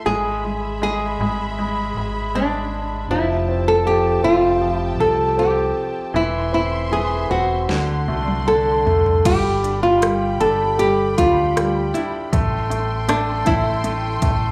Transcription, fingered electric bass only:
0.06 G#1
1.20 G#1
1.96 G#1
3.10 F1
4.23 F1
4.99 C2
6.14 E1
7.30 E1
7.69 D2
8.08 C2
9.25 G1
10.41 G1
11.18 D2
12.33 A1
13.47 A1
14.22 A1

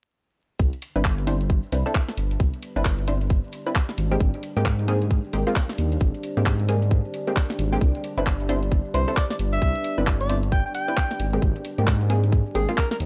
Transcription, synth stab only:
0.96 C4 D4 E4 B4
1.27 C4 D4 E4 C5
1.72 C4 D4 E4 B4
1.86 C4 D4 E4 A4
2.76 C4 D4 E4 B4
3.08 C4 D4 E4 C5
3.66 C4 D4 E4 B4
4.11 G#3 A#3 C4 G4
4.57 G#3 A#3 C4 G4
4.88 G#3 A#3 C4 G#4
5.33 G#3 A#3 C4 G4
5.47 G#3 A#3 C4 F4
6.37 G#3 A#3 C4 G4
6.69 G#3 A#3 C4 G#4
7.27 G#3 A#3 C4 G4
7.72 G#3 A#3 C4 G4
8.18 C4 D4 E4 B4
8.49 C4 D4 E4 C5
8.94 C4 D4 E4 B4
9.08 C4 D4 E4 A4
9.98 C4 D4 E4 B4
10.29 C4 D4 E4 C5
10.88 C4 D4 E4 B4
11.33 G#3 A#3 C4 G4
11.78 G#3 A#3 C4 G4
12.10 G#3 A#3 C4 G#4
12.55 G#3 A#3 C4 G4
12.69 G#3 A#3 C4 F4

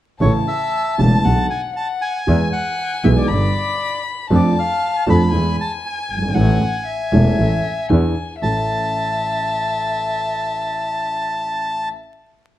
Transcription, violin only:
0.21 A5
1.25 F#5
1.77 F#5
2.27 G#5
3.28 B5
4.31 A5
5.32 G#5
6.34 F#5
6.86 E5
7.89 G#5
8.41 E5

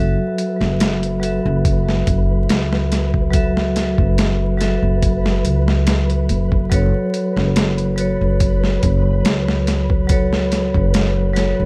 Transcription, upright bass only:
Already playing: F#1
0.60 F#1
1.45 F#1
2.07 F#1
2.49 C#2
3.98 F#1
4.82 F#1
5.45 C#2
6.30 F#1
6.72 F#1
7.36 F#1
8.21 F#1
8.83 F#1
9.25 C#2
10.75 F#1
11.60 F#1

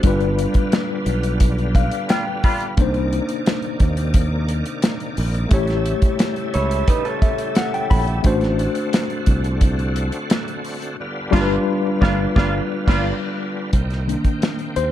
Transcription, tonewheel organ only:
Already playing: D3
0.04 G3 B3 F4
2.78 C3 D#3 A#3 D5
5.50 C#3 G3 A3 E4
8.25 D3 A3 C4 F#4
11.00 D3 G3 B3 F4
13.74 D#3 A#3 C4 G5

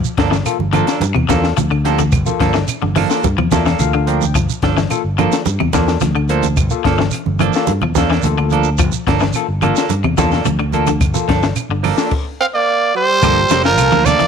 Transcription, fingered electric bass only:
0.18 G1
0.59 G1
1.00 G2
1.15 E2
1.29 E2
1.57 D2
2.13 G1
2.40 G1
2.82 G1
3.24 G2
3.38 E2
3.52 E2
3.79 D2
4.35 G1
4.63 G1
5.04 G1
5.46 G2
5.60 E2
5.73 E2
6.02 D2
6.57 G1
6.85 G1
7.27 G1
7.69 G2
7.83 E2
7.96 E2
8.24 D2
8.80 G1
9.07 G1
9.49 G1
9.90 G2
10.04 E2
10.18 E2
10.45 D2
11.00 G1
11.28 G1
11.69 G1
13.23 G1
13.50 F1
13.78 C2
13.91 D2

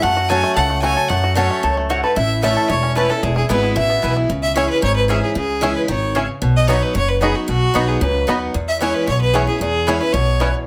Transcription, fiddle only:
0.02 F#5
0.29 G#5
0.55 F#5
0.82 G#5
1.09 F#5
1.36 C#5
2.03 B4
2.16 E5
2.43 E5
2.70 C#5
2.97 B4
3.10 A4
3.23 G#4
3.36 G#4
3.50 B4
3.77 E5
4.43 E5
4.56 C#5
4.69 B4
4.83 C#5
4.96 B4
5.09 G#4
5.23 G#4
5.36 G#4
5.76 B4
5.89 C#5
6.57 D#5
6.69 C#5
6.83 B4
6.95 C#5
7.08 B4
7.21 G#4
7.36 F#4
7.48 F#4
7.88 G#4
8.01 B4
8.68 E5
8.81 C#5
8.94 B4
9.08 C#5
9.21 B4
9.34 G#4
9.47 G#4
9.60 G#4
10.00 B4
10.13 C#5

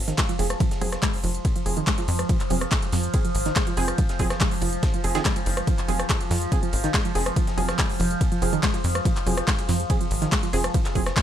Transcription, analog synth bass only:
Already playing: G#1
0.39 F1
0.81 F1
1.24 F1
1.66 F1
2.08 F2
2.50 F1
2.93 F2
3.35 G#1
3.77 F1
4.20 F1
4.62 F1
5.04 F1
5.46 F#1
5.88 F1
6.31 F2
6.73 G#1
7.15 F1
7.57 F1
8.00 F1
8.42 F1
8.84 F2
9.26 F1
9.69 F2
10.11 G#1
10.53 F1
10.95 F1

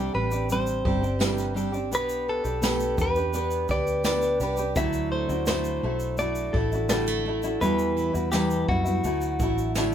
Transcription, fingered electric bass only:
Already playing: C2
0.15 A1
0.85 G1
1.91 B1
2.45 B1
2.98 E2
3.69 D2
4.40 C2
4.76 D2
5.29 D2
5.83 B1
6.54 A1
7.61 E2
8.14 E2
8.69 F#2
9.04 D2
9.40 A1

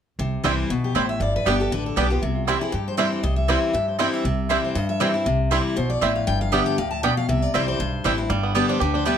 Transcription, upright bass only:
0.19 C2
0.44 C2
0.69 B1
0.95 A1
1.20 G1
1.46 G1
1.71 A1
1.97 B1
2.22 C2
2.73 G2
3.23 C2
3.74 G2
4.24 C2
4.75 G2
5.26 C2
5.77 B1
6.02 A1
6.28 G1
6.78 D2
7.29 C2
7.54 C2
7.79 B1
8.05 A1
8.30 G1
8.81 D2

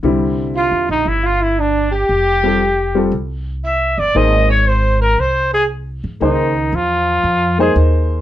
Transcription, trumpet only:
0.57 F4
0.91 D#4
1.08 E4
1.26 F4
1.43 E4
1.60 D4
1.94 G4
3.66 E5
3.99 D5
4.17 D#5
4.51 C#5
4.68 C5
5.02 A#4
5.20 C5
5.54 G#4
6.24 D#4
6.75 F4
7.61 G#4

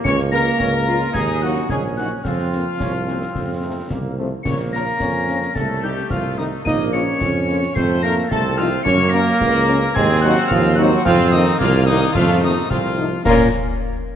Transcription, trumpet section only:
0.05 C#5
0.33 A#4
1.15 G#4
1.42 F#4
1.70 G#4
1.97 F#4
2.25 F4
4.45 C#5
4.73 A#4
5.54 A4
5.83 G4
6.11 F4
6.37 D#4
6.66 D#5
6.92 C#5
7.75 C5
8.03 A#4
8.30 A4
8.58 F4
8.85 C#5
9.12 A#4
9.94 G#4
10.22 F#4
10.50 F4
10.77 F#4
11.05 F4
11.31 D#4
11.60 F4
11.86 D#4
12.13 F4
12.41 D#4
12.69 F4
13.24 A#4

